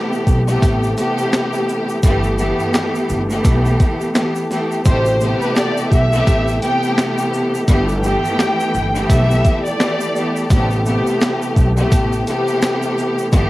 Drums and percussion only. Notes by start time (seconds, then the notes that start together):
0.13 shaker
0.27 kick, shaker
0.48 shaker
0.63 kick, closed hi-hat, shaker
0.83 shaker
0.97 closed hi-hat, shaker
1.18 shaker
1.33 snare, closed hi-hat, shaker
1.53 shaker
1.69 shaker
1.89 shaker
2.03 kick, closed hi-hat, shaker
2.23 shaker
2.38 shaker
2.59 shaker
2.74 snare, closed hi-hat, shaker
2.95 shaker
3.09 shaker
3.30 shaker
3.45 kick, closed hi-hat, shaker
3.65 shaker
3.80 kick, closed hi-hat, shaker
4.01 shaker
4.15 snare, closed hi-hat, shaker
4.35 shaker
4.51 snare, shaker
4.72 shaker
4.85 kick, closed hi-hat, shaker
5.05 shaker
5.21 shaker
5.42 shaker
5.56 snare, closed hi-hat, shaker
5.77 shaker
5.92 kick, shaker
6.13 shaker
6.27 kick, closed hi-hat, shaker
6.48 shaker
6.62 closed hi-hat, shaker
6.83 shaker
6.98 snare, closed hi-hat, shaker
7.18 shaker
7.34 shaker
7.54 shaker
7.68 kick, closed hi-hat, shaker
7.88 shaker
8.04 shaker
8.25 shaker
8.39 snare, closed hi-hat, shaker
8.60 shaker
8.74 shaker
8.95 shaker
9.10 kick, closed hi-hat, shaker
9.31 shaker
9.45 kick, closed hi-hat, shaker
9.66 shaker
9.80 snare, closed hi-hat, shaker
10.01 shaker
10.16 shaker
10.36 shaker
10.50 kick, closed hi-hat, shaker
10.71 shaker
10.86 shaker
11.07 shaker
11.21 snare, closed hi-hat, shaker
11.42 shaker
11.56 kick, shaker
11.77 shaker
11.92 kick, closed hi-hat, shaker
12.12 shaker
12.27 closed hi-hat, shaker
12.48 shaker
12.62 snare, closed hi-hat, shaker
12.82 shaker
12.98 shaker
13.18 shaker
13.32 kick, closed hi-hat, shaker